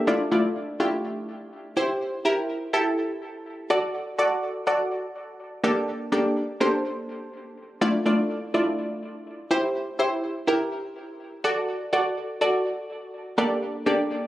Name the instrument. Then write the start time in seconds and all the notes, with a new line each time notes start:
synth pluck
0.07 A3 D4 E4 F4 D5
0.31 A3 D4 E4 F4 D5
0.80 A3 D4 E4 F4 G4
1.77 E4 G4 C5
2.25 E4 G4 A#4
2.73 E4 G4 A4
3.70 F#4 A4 D5
4.18 F#4 A4 D5
4.67 F#4 A4 D5
5.64 A#3 D4 G4 A4 D5
6.12 A#3 D4 G4 A4 D5
6.60 A#3 D4 G4 A4 C5
7.81 A3 D4 E4 F4 D5
8.06 A3 D4 E4 F4 D5
8.54 A3 D4 E4 F4 D5
9.51 E4 G4 C5
9.99 E4 G4 C5
10.47 E4 G4 A#4
11.44 F#4 A4 D5
11.93 F#4 A4 D5
12.41 F#4 A4 D5
13.38 A#3 D4 G4 A4 D5
13.86 A#3 D4 G4 A4 D5